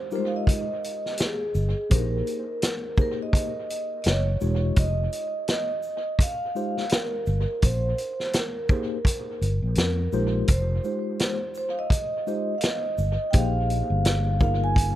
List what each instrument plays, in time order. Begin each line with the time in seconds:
Already playing: vibraphone C5
0.11 tine electric piano G3 D#4 F4 G4 A#4, shaker
0.16 tine electric piano G#3, vibraphone C5
0.27 vibraphone F5
0.36 vibraphone D#5
0.47 kick, closed hi-hat
0.84 closed hi-hat, shaker
1.06 snare
1.17 vibraphone G4, snare, closed hi-hat
1.23 vibraphone G#4
1.55 fretless electric bass G1, shaker
1.90 fretless electric bass A#1, tine electric piano A#3 D4 G4 G#4 C5, kick, closed hi-hat
1.94 tine electric piano D#4, vibraphone A#4
2.27 closed hi-hat, shaker
2.62 snare, closed hi-hat
2.97 tine electric piano A#3 D#4 G4 G#4 C5, kick, shaker
3.02 vibraphone A#4
3.23 vibraphone D#5
3.33 kick, closed hi-hat
3.70 closed hi-hat, shaker
4.02 fretless electric bass F#1, vibraphone D#5, closed hi-hat
4.07 vibraphone C#5, snare
4.41 fretless electric bass E1, tine electric piano G#3 D#4 F4 G4 C#5, shaker
4.76 fretless electric bass F1, vibraphone D#5, kick, closed hi-hat
5.13 closed hi-hat, shaker
5.48 vibraphone D#5, snare, closed hi-hat
5.83 shaker
6.19 vibraphone F5, kick, closed hi-hat
6.55 tine electric piano G#3 D#4 F4 G4 C5, shaker
6.77 snare
6.89 snare, closed hi-hat
6.94 vibraphone A#4
7.26 fretless electric bass G1, shaker
7.62 fretless electric bass A#1, vibraphone C5, kick, closed hi-hat
7.98 closed hi-hat, shaker
8.20 snare
8.33 vibraphone A#4, snare, closed hi-hat
8.69 tine electric piano A#3 D#4 G4 G#4 C5, kick, shaker
9.05 kick, closed hi-hat
9.41 fretless electric bass G1, closed hi-hat, shaker
9.62 fretless electric bass A#1
9.75 fretless electric bass F2, snare, closed hi-hat
9.79 vibraphone A#4
10.12 fretless electric bass A#1, tine electric piano G#3 D#4 F4 G4 C5, shaker
10.48 fretless electric bass F1, vibraphone C5, kick, closed hi-hat
10.84 tine electric piano G#3 D#4 F4 G4 C5, shaker
11.19 snare, closed hi-hat
11.55 vibraphone C5, shaker
11.70 vibraphone F5
11.79 vibraphone D#5
11.90 kick, closed hi-hat
12.27 tine electric piano G#3 D#4 F4 G4 C5, shaker
12.58 vibraphone F5, closed hi-hat
12.64 vibraphone D#5, snare
12.98 fretless electric bass G1, shaker
13.31 fretless electric bass A#1, tine electric piano A#3 D#4 G4 G#4 C5, vibraphone G5, kick, closed hi-hat
13.37 vibraphone F5
13.70 closed hi-hat, shaker
13.90 fretless electric bass G1
14.05 snare, closed hi-hat
14.40 tine electric piano A#3 D#4 F4 G#4 A#4, vibraphone F5, kick, shaker
14.64 vibraphone G#5
14.76 kick, closed hi-hat